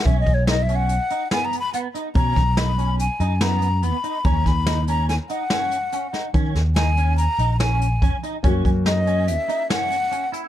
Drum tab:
HH |xxxxxxxxxx|xxxxxxxxxx|xxxxxxxxxx|xxxxxxxxxx|
SD |--o---o---|-oo---o---|-oo-o-o--o|-oo---o---|
BD |oo--------|oo--------|oo--------|o-------o-|

HH |xxxxxxxxxx|
SD |--o---o---|
BD |oo--------|